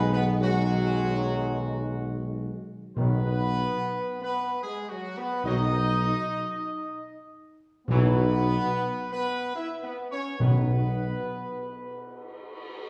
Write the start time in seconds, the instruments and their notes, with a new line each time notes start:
Already playing: tuba B1, trombone section D#3 G#3, trumpet section B4
0.12 french horn section B3, trumpet section B4
0.40 trombone section D#3 G#3, french horn section F#3, trumpet section F#4
2.96 tuba B1, timpani B2, trombone section D#3 F#3, french horn section B3, trumpet section B4
4.22 french horn section B3, trumpet section B4
4.63 french horn section G#3, trumpet section G#4
4.90 french horn section F#3, trumpet section F#4
5.17 french horn section B3, trumpet section B4
5.44 tuba B1, trombone section D#3 F#3, french horn section D#4, trumpet section D#5
7.87 tuba B1, timpani B2, trombone section E3 F#3, french horn section B3, trumpet section B4
9.11 french horn section B3, trumpet section B4
9.55 french horn section E4, trumpet section E5
9.82 french horn section B3, trumpet section B4
10.11 french horn section C#4, trumpet section C#5
10.39 tuba B1, timpani B2, trombone section D#3 F#3, french horn section B3, trumpet section B4